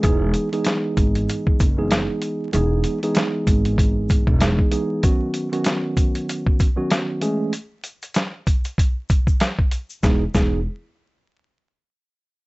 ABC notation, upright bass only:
X:1
M:4/4
L:1/16
Q:"Swing 16ths" 1/4=96
K:E
V:1 name="Upright bass" clef=bass
E,,,2 z4 G,,,2 z2 F,,,3 z3 | E,,,2 z4 G,,,4- G,,, E,,,2 z3 | z16 | z16 |
E,,, z E,,,2 z12 |]